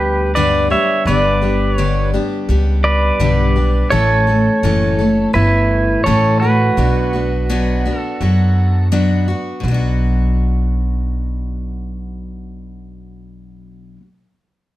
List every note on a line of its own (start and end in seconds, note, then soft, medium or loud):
0.00 0.73 D2 medium
0.00 0.35 G3 medium
0.00 0.35 B3 medium
0.00 0.35 D4 medium
0.00 0.32 G4 medium
0.00 0.36 G4 medium
0.00 0.34 B4 medium
0.35 0.71 G2 medium
0.35 0.71 D3 medium
0.35 0.71 G3 medium
0.35 0.70 B3 medium
0.35 0.70 D4 medium
0.35 0.69 G4 medium
0.35 0.68 B4 medium
0.35 0.71 D5 medium
0.70 1.06 G3 soft
0.70 1.07 B3 soft
0.70 1.06 D4 soft
0.70 1.06 G4 medium
0.70 1.04 C#5 medium
0.70 1.08 E5 medium
1.05 2.16 G1 medium
1.05 1.42 G2 medium
1.05 1.42 D3 medium
1.05 1.42 G3 medium
1.05 1.42 B3 medium
1.05 1.41 D4 medium
1.05 1.40 G4 medium
1.05 2.09 B4 medium
1.05 1.75 D5 medium
1.42 1.77 G3 soft
1.42 1.78 B3 soft
1.42 1.78 D4 medium
1.42 1.77 G4 medium
1.75 2.13 G2 medium
1.75 2.14 D3 medium
1.75 2.14 G3 medium
1.75 2.14 B3 medium
1.75 2.13 D4 medium
1.75 2.12 G4 medium
1.75 2.10 C#5 medium
2.14 2.47 G3 medium
2.14 2.49 B3 medium
2.14 2.49 D4 medium
2.14 2.49 G4 medium
2.49 3.09 C#2 medium
2.49 3.19 G3 medium
2.49 3.20 B3 medium
2.49 3.20 D4 medium
2.49 3.20 G4 medium
2.84 3.88 B4 medium
2.84 3.95 D5 loud
3.20 3.81 B1 medium
3.20 3.56 G2 medium
3.20 3.56 D3 medium
3.20 3.56 G3 medium
3.20 3.55 B3 medium
3.20 3.55 D4 medium
3.20 3.54 G4 medium
3.56 3.91 G3 soft
3.56 3.91 B3 soft
3.56 3.92 D4 soft
3.56 3.92 G4 medium
3.90 4.47 A1 medium
3.90 4.27 A2 medium
3.90 4.27 E3 medium
3.90 4.27 A3 medium
3.90 4.27 C#4 medium
3.90 5.31 A4 medium
3.90 4.26 A4 medium
3.90 5.30 C#5 loud
4.27 4.63 A3 soft
4.27 4.64 C#4 soft
4.27 4.63 A4 medium
4.63 5.24 F#1 medium
4.63 4.99 A2 medium
4.63 4.99 E3 medium
4.63 4.99 A3 medium
4.63 4.99 C#4 medium
4.63 4.98 A4 medium
4.99 5.33 A3 soft
4.99 5.34 C#4 medium
4.99 5.34 A4 medium
5.33 5.95 G1 medium
5.33 6.05 E3 medium
5.33 6.06 A3 medium
5.33 6.06 C#4 medium
5.33 6.02 E4 medium
5.33 6.07 A4 medium
5.33 6.02 B4 medium
6.04 6.67 A1 medium
6.04 6.42 A2 medium
6.04 6.42 E3 medium
6.04 6.42 A3 medium
6.04 6.42 C#4 medium
6.04 6.39 A4 medium
6.04 6.41 A4 medium
6.04 6.39 C#5 medium
6.40 6.78 C#4 soft
6.40 8.88 F#4 medium
6.40 6.78 A4 soft
6.40 7.98 B4 medium
6.45 6.77 A3 soft
6.77 7.88 B1 medium
6.77 7.13 B2 medium
6.77 7.14 F#3 medium
6.77 7.13 B3 medium
6.77 7.13 D4 medium
6.77 7.12 F#4 medium
7.13 7.49 B3 soft
7.13 7.49 D4 soft
7.13 7.49 F#4 medium
7.49 7.85 B2 medium
7.49 7.85 F#3 medium
7.49 7.85 B3 medium
7.49 7.85 D4 medium
7.49 7.84 F#4 loud
7.85 8.20 B3 soft
7.85 8.20 D4 medium
7.85 8.21 F#4 medium
7.98 8.87 A4 medium
8.21 9.31 F#2 medium
8.21 8.91 F#3 medium
8.21 8.91 B3 medium
8.21 8.91 D4 medium
8.21 8.92 F#4 medium
8.92 9.28 B2 medium
8.92 9.28 F#3 medium
8.92 9.28 B3 loud
8.92 9.28 D4 medium
8.92 9.27 F#4 loud
9.28 9.65 B3 soft
9.28 9.64 D4 medium
9.28 9.64 F#4 medium
9.60 13.95 B1 medium
9.60 13.98 B2 medium
9.64 14.00 F#3 medium
9.64 14.02 B3 medium
9.71 14.03 D4 medium
9.71 14.05 F#4 medium